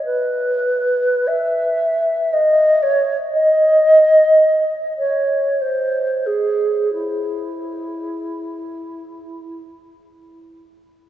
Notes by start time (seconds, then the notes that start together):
0.05 B4
1.27 E5
2.33 D#5
2.82 C#5
3.34 D#5
4.98 C#5
5.61 C5
6.26 G#4
6.93 E4